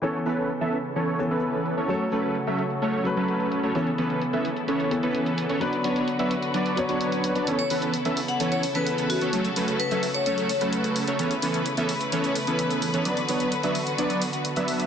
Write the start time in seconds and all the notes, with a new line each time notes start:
0.02 C#3 E3 B3 C#4 E4 A4 C#5, closed hi-hat
0.14 closed hi-hat
0.26 E3 B3 C#4 A4 B4, closed hi-hat
0.38 closed hi-hat
0.49 closed hi-hat
0.61 E3 B3 C#4 A4 E5, closed hi-hat
0.73 closed hi-hat
0.84 closed hi-hat
0.96 E3 B3 C#4 A4 C#5, closed hi-hat
1.08 closed hi-hat
1.19 E3 B3 C#4 A4, closed hi-hat
1.31 E3 B3 C#4 A4 B4, closed hi-hat
1.42 closed hi-hat
1.54 closed hi-hat
1.66 closed hi-hat
1.77 E3 B3 C#4 A4 C#5, closed hi-hat
1.88 F#3 A3 C#4 F#4 A4 C#5, closed hi-hat
2.00 closed hi-hat
2.12 F#3 A3 C#4 A4 B4, closed hi-hat
2.24 closed hi-hat
2.35 closed hi-hat
2.47 F#3 A3 C#4 A4 E5, closed hi-hat
2.59 closed hi-hat
2.70 closed hi-hat
2.82 F#3 A3 C#4 A4 C#5, closed hi-hat
2.94 closed hi-hat
3.04 F#3 A3 C#4 B4, closed hi-hat
3.17 F#3 A3 C#4 A4 B4, closed hi-hat
3.28 closed hi-hat
3.40 closed hi-hat
3.52 closed hi-hat
3.63 F#3 A3 C#4 A4 C#5, closed hi-hat
3.74 E3 B3 C#4 E4 A4 C#5, closed hi-hat
3.87 closed hi-hat
3.98 E3 B3 C#4 A4 B4, closed hi-hat
4.10 closed hi-hat
4.22 closed hi-hat
4.33 E3 B3 C#4 A4 E5, closed hi-hat
4.45 closed hi-hat
4.57 closed hi-hat
4.68 E3 B3 C#4 A4 C#5, closed hi-hat
4.80 closed hi-hat
4.91 E3 B3 C#4 A4, closed hi-hat
5.03 E3 B3 C#4 A4 B4, closed hi-hat
5.15 closed hi-hat
5.26 closed hi-hat
5.38 closed hi-hat
5.49 E3 B3 C#4 A4 C#5, closed hi-hat
5.60 D3 F#3 B3 D4 F#4 B4 D5, closed hi-hat
5.73 closed hi-hat
5.84 F#3 B3 D4 B4 C#5, closed hi-hat
5.96 closed hi-hat
6.08 closed hi-hat
6.19 F#3 B3 D4 B4 E5, closed hi-hat
6.31 closed hi-hat
6.42 closed hi-hat
6.54 F#3 B3 D4 B4 D5, closed hi-hat
6.66 closed hi-hat
6.76 F#3 B3 D4 C#5, closed hi-hat
6.89 F#3 B3 D4 B4 C#5, closed hi-hat
7.01 closed hi-hat
7.12 closed hi-hat
7.24 closed hi-hat
7.35 F#3 B3 D4 B4 D5, closed hi-hat
7.47 C#3 E3 B3 C#4 E4 A4 C#5, closed hi-hat
7.59 C#5, closed hi-hat
7.70 E3 B3 C#4 A4 B4, open hi-hat
7.82 closed hi-hat
7.94 closed hi-hat
8.05 E3 B3 C#4 A4 E5, closed hi-hat
8.17 open hi-hat
8.28 F#5, closed hi-hat
8.40 E3 B3 C#4 A4 C#5 F#5, closed hi-hat
8.52 C#5, closed hi-hat
8.63 open hi-hat
8.75 E3 B3 C#4 A4 B4, closed hi-hat
8.87 closed hi-hat
8.98 closed hi-hat
9.10 F#4, open hi-hat
9.21 E3 B3 C#4 A4 C#5, closed hi-hat
9.33 F#3 A3 C#4 F#4 A4 C#5, closed hi-hat
9.45 closed hi-hat
9.56 F#3 A3 C#4 A4 B4, open hi-hat
9.68 closed hi-hat
9.80 B4, closed hi-hat
9.91 F#3 A3 C#4 A4 B4 E5, closed hi-hat
10.03 open hi-hat
10.14 C#5, closed hi-hat
10.26 F#3 A3 C#4 A4 C#5, closed hi-hat
10.38 closed hi-hat
10.49 open hi-hat
10.61 F#3 A3 C#4 A4 B4, closed hi-hat
10.73 closed hi-hat
10.84 closed hi-hat
10.96 open hi-hat
11.08 F#3 A3 C#4 A4 C#5, closed hi-hat
11.19 E3 A3 B3 C#4 E4 A4 B4 C#5, closed hi-hat
11.31 closed hi-hat
11.42 E3 B3 C#4 A4 B4, open hi-hat
11.54 closed hi-hat
11.66 closed hi-hat
11.77 E3 B3 C#4 A4 E5, closed hi-hat
11.89 open hi-hat
12.01 closed hi-hat
12.12 E3 B3 C#4 A4 C#5, closed hi-hat
12.24 closed hi-hat
12.35 open hi-hat
12.47 E3 B3 C#4 A4 B4, closed hi-hat
12.59 closed hi-hat
12.71 closed hi-hat
12.82 open hi-hat
12.94 E3 B3 C#4 A4 C#5, closed hi-hat
13.05 D3 F#3 B3 D4 F#4 B4 D5, closed hi-hat
13.17 closed hi-hat
13.29 F#3 B3 D4 B4 C#5, open hi-hat
13.40 closed hi-hat
13.52 closed hi-hat
13.63 F#3 B3 D4 B4 E5, closed hi-hat
13.75 open hi-hat
13.87 closed hi-hat
13.98 F#3 B3 D4 B4 D5, closed hi-hat
14.10 closed hi-hat
14.22 open hi-hat
14.33 closed hi-hat
14.45 closed hi-hat
14.56 F#3 B3 D4 B4 E5, closed hi-hat
14.68 open hi-hat
14.80 closed hi-hat